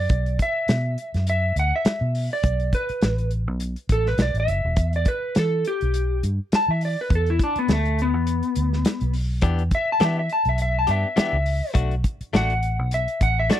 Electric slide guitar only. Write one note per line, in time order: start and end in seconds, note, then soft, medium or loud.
0.00 0.39 D5 medium
0.42 1.26 E5 medium
1.30 1.57 E5 medium
1.59 1.74 F#5 medium
1.76 2.31 E5 medium
2.33 2.73 D5 medium
2.75 3.31 B4 medium
3.92 4.07 A4 medium
4.08 4.20 B4 medium
4.22 4.36 D5 medium
4.40 4.94 E5 medium
4.96 5.08 D5 medium
5.08 5.36 B4 medium
5.39 5.66 A4 medium
5.68 6.23 G4 medium
6.55 6.70 A5 medium
6.71 6.82 E5 medium
6.85 6.99 D5 medium
7.01 7.12 B4 medium
7.15 7.29 A4 medium
7.30 7.41 E4 medium
7.44 7.57 D4 medium
7.59 7.70 B3 medium
7.73 7.99 A3 medium
8.02 9.13 B3 medium
9.75 9.89 E5 loud
9.92 10.03 A5 medium
10.05 10.18 E5 medium
10.19 10.31 E5 medium
10.33 10.47 A5 medium
10.49 10.61 E5 medium
10.62 10.77 E5 loud
10.79 10.90 A5 medium
10.91 11.18 E5 medium
11.20 11.75 E5 loud
12.36 12.92 F#5 loud
12.94 13.22 E5 medium
13.23 13.38 F#5 medium
13.39 13.51 E5 medium
13.53 13.60 D5 loud